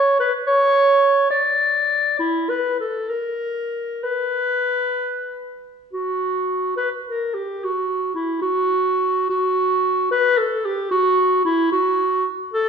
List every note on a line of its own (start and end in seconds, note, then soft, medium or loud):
0.00 0.19 C#5 medium
0.20 0.32 B4 medium
0.47 1.29 C#5 medium
1.30 2.18 D5 medium
2.19 2.51 E4 medium
2.49 2.79 B4 medium
2.80 3.10 A4 medium
3.09 4.05 A#4 medium
4.04 5.62 B4 medium
5.93 6.75 F#4 medium
6.77 6.90 B4 medium
7.08 7.36 A#4 medium
7.34 7.65 G4 medium
7.64 8.14 F#4 medium
8.15 8.41 E4 medium
8.41 9.26 F#4 medium
9.29 10.10 F#4 medium
10.11 10.39 B4 medium
10.38 10.66 A4 medium
10.65 10.91 G4 medium
10.91 11.44 F#4 medium
11.45 11.71 E4 medium
11.72 12.26 F#4 medium
12.53 12.69 A4 loud